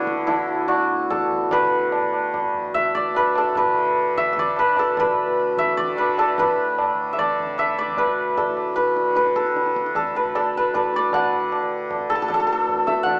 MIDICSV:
0, 0, Header, 1, 4, 480
1, 0, Start_track
1, 0, Tempo, 410959
1, 319, Time_signature, 3, 2, 24, 8
1, 4156, Tempo, 403497
1, 7996, Tempo, 396040
1, 11836, Tempo, 388853
1, 15837, End_track
2, 0, Start_track
2, 0, Title_t, "Santur"
2, 0, Program_c, 0, 15
2, 0, Note_on_c, 0, 59, 81
2, 0, Note_on_c, 0, 62, 75
2, 0, Note_on_c, 0, 64, 89
2, 0, Note_on_c, 0, 66, 89
2, 309, Note_off_c, 0, 64, 0
2, 314, Note_on_c, 0, 64, 74
2, 788, Note_off_c, 0, 66, 0
2, 793, Note_on_c, 0, 66, 77
2, 1289, Note_on_c, 0, 69, 82
2, 1779, Note_on_c, 0, 71, 89
2, 3204, Note_on_c, 0, 76, 97
2, 3442, Note_on_c, 0, 74, 84
2, 3681, Note_off_c, 0, 59, 0
2, 3690, Note_off_c, 0, 71, 0
2, 3694, Note_on_c, 0, 71, 86
2, 3923, Note_off_c, 0, 62, 0
2, 3939, Note_off_c, 0, 69, 0
2, 3944, Note_on_c, 0, 69, 72
2, 4167, Note_off_c, 0, 71, 0
2, 4172, Note_on_c, 0, 71, 72
2, 4379, Note_off_c, 0, 64, 0
2, 4614, Note_off_c, 0, 66, 0
2, 4885, Note_off_c, 0, 76, 0
2, 4890, Note_on_c, 0, 76, 99
2, 5065, Note_off_c, 0, 76, 0
2, 5070, Note_on_c, 0, 76, 71
2, 5142, Note_off_c, 0, 74, 0
2, 5146, Note_on_c, 0, 74, 87
2, 5377, Note_off_c, 0, 71, 0
2, 5381, Note_on_c, 0, 71, 88
2, 5617, Note_off_c, 0, 69, 0
2, 5622, Note_on_c, 0, 69, 79
2, 5862, Note_off_c, 0, 71, 0
2, 5866, Note_on_c, 0, 71, 81
2, 6562, Note_off_c, 0, 76, 0
2, 6567, Note_on_c, 0, 76, 96
2, 6786, Note_off_c, 0, 74, 0
2, 6790, Note_on_c, 0, 74, 95
2, 7033, Note_off_c, 0, 71, 0
2, 7038, Note_on_c, 0, 71, 82
2, 7280, Note_off_c, 0, 69, 0
2, 7285, Note_on_c, 0, 69, 87
2, 7522, Note_off_c, 0, 71, 0
2, 7526, Note_on_c, 0, 71, 75
2, 8407, Note_off_c, 0, 76, 0
2, 8412, Note_on_c, 0, 76, 70
2, 8476, Note_off_c, 0, 74, 0
2, 8481, Note_on_c, 0, 74, 89
2, 8963, Note_off_c, 0, 76, 0
2, 8968, Note_on_c, 0, 76, 96
2, 9202, Note_off_c, 0, 74, 0
2, 9207, Note_on_c, 0, 74, 85
2, 9438, Note_off_c, 0, 71, 0
2, 9443, Note_on_c, 0, 71, 79
2, 9915, Note_off_c, 0, 69, 0
2, 9920, Note_on_c, 0, 69, 72
2, 10380, Note_off_c, 0, 71, 0
2, 10384, Note_on_c, 0, 71, 83
2, 10872, Note_off_c, 0, 71, 0
2, 10877, Note_on_c, 0, 71, 75
2, 11108, Note_off_c, 0, 69, 0
2, 11113, Note_on_c, 0, 69, 74
2, 11748, Note_off_c, 0, 76, 0
2, 11835, Note_off_c, 0, 69, 0
2, 11840, Note_on_c, 0, 69, 78
2, 12088, Note_off_c, 0, 71, 0
2, 12093, Note_on_c, 0, 71, 75
2, 12198, Note_off_c, 0, 74, 0
2, 12324, Note_off_c, 0, 69, 0
2, 12329, Note_on_c, 0, 69, 77
2, 12595, Note_off_c, 0, 71, 0
2, 12600, Note_on_c, 0, 71, 79
2, 12810, Note_off_c, 0, 71, 0
2, 12815, Note_on_c, 0, 71, 76
2, 13079, Note_on_c, 0, 74, 88
2, 13299, Note_on_c, 0, 78, 86
2, 14476, Note_off_c, 0, 69, 0
2, 14481, Note_on_c, 0, 69, 98
2, 14545, Note_off_c, 0, 69, 0
2, 14550, Note_on_c, 0, 69, 74
2, 14627, Note_off_c, 0, 69, 0
2, 14632, Note_on_c, 0, 69, 74
2, 14704, Note_off_c, 0, 69, 0
2, 14709, Note_on_c, 0, 69, 69
2, 14777, Note_off_c, 0, 69, 0
2, 14782, Note_on_c, 0, 69, 83
2, 14847, Note_off_c, 0, 69, 0
2, 14851, Note_on_c, 0, 69, 67
2, 14934, Note_off_c, 0, 69, 0
2, 14939, Note_on_c, 0, 69, 74
2, 15003, Note_off_c, 0, 69, 0
2, 15008, Note_on_c, 0, 69, 73
2, 15434, Note_on_c, 0, 76, 81
2, 15630, Note_off_c, 0, 78, 0
2, 15635, Note_on_c, 0, 78, 93
2, 15837, Note_off_c, 0, 69, 0
2, 15837, Note_off_c, 0, 71, 0
2, 15837, Note_off_c, 0, 74, 0
2, 15837, Note_off_c, 0, 76, 0
2, 15837, Note_off_c, 0, 78, 0
2, 15837, End_track
3, 0, Start_track
3, 0, Title_t, "Tanpura"
3, 0, Program_c, 1, 104
3, 0, Note_on_c, 1, 38, 61
3, 0, Note_on_c, 1, 45, 63
3, 0, Note_on_c, 1, 50, 64
3, 436, Note_off_c, 1, 38, 0
3, 441, Note_on_c, 1, 38, 53
3, 1077, Note_off_c, 1, 45, 0
3, 1081, Note_on_c, 1, 45, 56
3, 1731, Note_off_c, 1, 50, 0
3, 1731, Note_on_c, 1, 50, 56
3, 2365, Note_off_c, 1, 50, 0
3, 2365, Note_on_c, 1, 50, 54
3, 2993, Note_off_c, 1, 38, 0
3, 2998, Note_on_c, 1, 38, 57
3, 3626, Note_off_c, 1, 45, 0
3, 3630, Note_on_c, 1, 45, 64
3, 4254, Note_off_c, 1, 50, 0
3, 4254, Note_on_c, 1, 50, 60
3, 4887, Note_off_c, 1, 50, 0
3, 4887, Note_on_c, 1, 50, 58
3, 5535, Note_off_c, 1, 38, 0
3, 5540, Note_on_c, 1, 38, 64
3, 6170, Note_off_c, 1, 45, 0
3, 6174, Note_on_c, 1, 45, 59
3, 6797, Note_off_c, 1, 50, 0
3, 6797, Note_on_c, 1, 50, 63
3, 7537, Note_off_c, 1, 45, 0
3, 7537, Note_on_c, 1, 45, 59
3, 8177, Note_off_c, 1, 50, 0
3, 8177, Note_on_c, 1, 50, 59
3, 8795, Note_off_c, 1, 50, 0
3, 8795, Note_on_c, 1, 50, 60
3, 9422, Note_off_c, 1, 38, 0
3, 9427, Note_on_c, 1, 38, 59
3, 10068, Note_off_c, 1, 45, 0
3, 10068, Note_on_c, 1, 45, 64
3, 10684, Note_off_c, 1, 50, 0
3, 10684, Note_on_c, 1, 50, 55
3, 11323, Note_off_c, 1, 50, 0
3, 11323, Note_on_c, 1, 50, 57
3, 11959, Note_off_c, 1, 38, 0
3, 11963, Note_on_c, 1, 38, 54
3, 12603, Note_off_c, 1, 45, 0
3, 12608, Note_on_c, 1, 45, 58
3, 13251, Note_off_c, 1, 50, 0
3, 13251, Note_on_c, 1, 50, 56
3, 13896, Note_off_c, 1, 50, 0
3, 13896, Note_on_c, 1, 50, 53
3, 14516, Note_off_c, 1, 38, 0
3, 14521, Note_on_c, 1, 38, 61
3, 15136, Note_off_c, 1, 45, 0
3, 15141, Note_on_c, 1, 45, 65
3, 15767, Note_off_c, 1, 50, 0
3, 15767, Note_on_c, 1, 50, 60
3, 15837, Note_off_c, 1, 38, 0
3, 15837, Note_off_c, 1, 45, 0
3, 15837, Note_off_c, 1, 50, 0
3, 15837, End_track
4, 0, Start_track
4, 0, Title_t, "Tabla"
4, 84, Note_on_c, 9, 37, 58
4, 201, Note_off_c, 9, 37, 0
4, 201, Note_on_c, 9, 62, 59
4, 318, Note_off_c, 9, 62, 0
4, 327, Note_on_c, 9, 60, 78
4, 327, Note_on_c, 9, 64, 64
4, 444, Note_off_c, 9, 60, 0
4, 444, Note_off_c, 9, 64, 0
4, 804, Note_on_c, 9, 60, 74
4, 921, Note_off_c, 9, 60, 0
4, 1291, Note_on_c, 9, 60, 78
4, 1291, Note_on_c, 9, 64, 66
4, 1408, Note_off_c, 9, 60, 0
4, 1408, Note_off_c, 9, 64, 0
4, 1531, Note_on_c, 9, 64, 49
4, 1647, Note_off_c, 9, 64, 0
4, 1766, Note_on_c, 9, 60, 99
4, 1766, Note_on_c, 9, 64, 88
4, 1883, Note_off_c, 9, 60, 0
4, 1883, Note_off_c, 9, 64, 0
4, 2246, Note_on_c, 9, 60, 78
4, 2363, Note_off_c, 9, 60, 0
4, 2491, Note_on_c, 9, 60, 59
4, 2608, Note_off_c, 9, 60, 0
4, 2733, Note_on_c, 9, 60, 77
4, 2733, Note_on_c, 9, 64, 65
4, 2850, Note_off_c, 9, 60, 0
4, 2850, Note_off_c, 9, 64, 0
4, 2972, Note_on_c, 9, 64, 52
4, 3089, Note_off_c, 9, 64, 0
4, 3214, Note_on_c, 9, 63, 72
4, 3214, Note_on_c, 9, 64, 70
4, 3331, Note_off_c, 9, 63, 0
4, 3331, Note_off_c, 9, 64, 0
4, 3445, Note_on_c, 9, 63, 78
4, 3445, Note_on_c, 9, 64, 65
4, 3562, Note_off_c, 9, 63, 0
4, 3562, Note_off_c, 9, 64, 0
4, 3678, Note_on_c, 9, 60, 72
4, 3795, Note_off_c, 9, 60, 0
4, 3918, Note_on_c, 9, 60, 77
4, 4035, Note_off_c, 9, 60, 0
4, 4150, Note_on_c, 9, 60, 87
4, 4150, Note_on_c, 9, 64, 81
4, 4269, Note_off_c, 9, 60, 0
4, 4269, Note_off_c, 9, 64, 0
4, 4875, Note_on_c, 9, 63, 76
4, 4875, Note_on_c, 9, 64, 67
4, 4994, Note_off_c, 9, 63, 0
4, 4994, Note_off_c, 9, 64, 0
4, 5121, Note_on_c, 9, 63, 73
4, 5121, Note_on_c, 9, 64, 68
4, 5240, Note_off_c, 9, 63, 0
4, 5240, Note_off_c, 9, 64, 0
4, 5356, Note_on_c, 9, 60, 75
4, 5475, Note_off_c, 9, 60, 0
4, 5593, Note_on_c, 9, 60, 74
4, 5712, Note_off_c, 9, 60, 0
4, 5837, Note_on_c, 9, 60, 95
4, 5837, Note_on_c, 9, 64, 88
4, 5956, Note_off_c, 9, 60, 0
4, 5956, Note_off_c, 9, 64, 0
4, 6554, Note_on_c, 9, 63, 72
4, 6554, Note_on_c, 9, 64, 70
4, 6673, Note_off_c, 9, 63, 0
4, 6673, Note_off_c, 9, 64, 0
4, 6793, Note_on_c, 9, 63, 78
4, 6793, Note_on_c, 9, 64, 74
4, 6912, Note_off_c, 9, 63, 0
4, 6912, Note_off_c, 9, 64, 0
4, 7028, Note_on_c, 9, 60, 72
4, 7147, Note_off_c, 9, 60, 0
4, 7277, Note_on_c, 9, 60, 80
4, 7396, Note_off_c, 9, 60, 0
4, 7513, Note_on_c, 9, 60, 95
4, 7513, Note_on_c, 9, 64, 89
4, 7632, Note_off_c, 9, 60, 0
4, 7632, Note_off_c, 9, 64, 0
4, 7994, Note_on_c, 9, 60, 80
4, 8116, Note_off_c, 9, 60, 0
4, 8483, Note_on_c, 9, 60, 73
4, 8483, Note_on_c, 9, 64, 69
4, 8604, Note_off_c, 9, 60, 0
4, 8604, Note_off_c, 9, 64, 0
4, 8728, Note_on_c, 9, 64, 52
4, 8849, Note_off_c, 9, 64, 0
4, 8958, Note_on_c, 9, 60, 74
4, 8958, Note_on_c, 9, 64, 63
4, 9079, Note_off_c, 9, 60, 0
4, 9079, Note_off_c, 9, 64, 0
4, 9199, Note_on_c, 9, 62, 54
4, 9320, Note_off_c, 9, 62, 0
4, 9326, Note_on_c, 9, 64, 53
4, 9434, Note_off_c, 9, 64, 0
4, 9434, Note_on_c, 9, 63, 75
4, 9434, Note_on_c, 9, 64, 68
4, 9555, Note_off_c, 9, 63, 0
4, 9555, Note_off_c, 9, 64, 0
4, 9923, Note_on_c, 9, 63, 74
4, 9923, Note_on_c, 9, 64, 67
4, 10045, Note_off_c, 9, 63, 0
4, 10045, Note_off_c, 9, 64, 0
4, 10158, Note_on_c, 9, 60, 58
4, 10279, Note_off_c, 9, 60, 0
4, 10398, Note_on_c, 9, 62, 71
4, 10519, Note_off_c, 9, 62, 0
4, 10635, Note_on_c, 9, 62, 60
4, 10756, Note_off_c, 9, 62, 0
4, 10868, Note_on_c, 9, 62, 77
4, 10989, Note_off_c, 9, 62, 0
4, 10995, Note_on_c, 9, 62, 56
4, 11115, Note_on_c, 9, 37, 55
4, 11117, Note_off_c, 9, 62, 0
4, 11236, Note_off_c, 9, 37, 0
4, 11241, Note_on_c, 9, 62, 62
4, 11362, Note_off_c, 9, 62, 0
4, 11362, Note_on_c, 9, 62, 69
4, 11483, Note_off_c, 9, 62, 0
4, 11483, Note_on_c, 9, 62, 58
4, 11604, Note_off_c, 9, 62, 0
4, 11606, Note_on_c, 9, 37, 59
4, 11725, Note_on_c, 9, 62, 61
4, 11727, Note_off_c, 9, 37, 0
4, 11832, Note_on_c, 9, 60, 73
4, 11832, Note_on_c, 9, 64, 69
4, 11846, Note_off_c, 9, 62, 0
4, 11956, Note_off_c, 9, 60, 0
4, 11956, Note_off_c, 9, 64, 0
4, 12081, Note_on_c, 9, 62, 56
4, 12204, Note_off_c, 9, 62, 0
4, 12209, Note_on_c, 9, 64, 52
4, 12327, Note_on_c, 9, 60, 75
4, 12333, Note_off_c, 9, 64, 0
4, 12450, Note_off_c, 9, 60, 0
4, 12809, Note_on_c, 9, 60, 73
4, 12809, Note_on_c, 9, 64, 66
4, 12932, Note_off_c, 9, 60, 0
4, 12932, Note_off_c, 9, 64, 0
4, 13051, Note_on_c, 9, 62, 60
4, 13174, Note_off_c, 9, 62, 0
4, 13286, Note_on_c, 9, 60, 94
4, 13286, Note_on_c, 9, 64, 88
4, 13409, Note_off_c, 9, 60, 0
4, 13409, Note_off_c, 9, 64, 0
4, 13773, Note_on_c, 9, 60, 77
4, 13896, Note_off_c, 9, 60, 0
4, 14245, Note_on_c, 9, 60, 75
4, 14245, Note_on_c, 9, 64, 68
4, 14369, Note_off_c, 9, 60, 0
4, 14369, Note_off_c, 9, 64, 0
4, 14487, Note_on_c, 9, 64, 54
4, 14610, Note_off_c, 9, 64, 0
4, 14732, Note_on_c, 9, 60, 75
4, 14732, Note_on_c, 9, 64, 72
4, 14856, Note_off_c, 9, 60, 0
4, 14856, Note_off_c, 9, 64, 0
4, 15212, Note_on_c, 9, 63, 77
4, 15212, Note_on_c, 9, 64, 64
4, 15336, Note_off_c, 9, 63, 0
4, 15336, Note_off_c, 9, 64, 0
4, 15447, Note_on_c, 9, 37, 80
4, 15571, Note_off_c, 9, 37, 0
4, 15676, Note_on_c, 9, 63, 73
4, 15676, Note_on_c, 9, 64, 67
4, 15800, Note_off_c, 9, 63, 0
4, 15800, Note_off_c, 9, 64, 0
4, 15837, End_track
0, 0, End_of_file